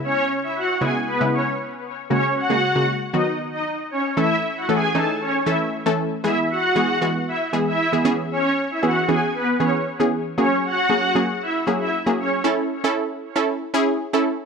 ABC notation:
X:1
M:4/4
L:1/16
Q:1/4=116
K:Alyd
V:1 name="Supersaw synth"
[Cc]2 z [Ee] [Ff]2 [Gg] z [B,B]2 [Cc] z4 z | [Cc]2 [Ff]4 z2 [Dd] z2 [Dd] z2 [Cc] z | [Ee]2 z [Ff] [Gg]2 [Aa] z [Cc]2 [Ee] z4 z | [Ee]2 [Ff]4 z2 [Ee] z2 [Ee]2 z3 |
[Cc]2 z [Ee] [Ff]2 [Gg] z [B,B]2 [Cc] z4 z | [Cc]2 [Ff]4 z2 [Ee] z2 [Ee] z2 [Cc] z | z16 |]
V:2 name="Synth pluck"
[C,G,B,E]4 z2 [C,G,B,E]2 z [C,G,B,E]4 z3 | [C,G,^A,F]2 z [C,G,A,G] z [C,G,A,F]3 [D,F,B,F]6 z2 | [E,A,CA]2 z2 [E,A,CA] z [E,A,CD]2 z2 [E,A,CA]2 z [E,A,CA]2 z | [E,G,B,G]2 z2 [E,G,B,G] z [E,G,B,F]2 z2 [E,G,B,G]2 z [E,G,B,G] [E,B,CG]2- |
[E,B,CG]3 z [E,B,CG] z [E,B,CG]2 z2 [E,B,CG]2 z [E,B,CG]2 z | [F,^A,CG]2 z2 [F,A,CG] z [F,A,CG]2 z2 [F,A,CG]2 z [F,A,CG]2 z | [CEA]2 z [CEA]2 z2 [CEA]2 z [CEG]2 z [CEA]2 z |]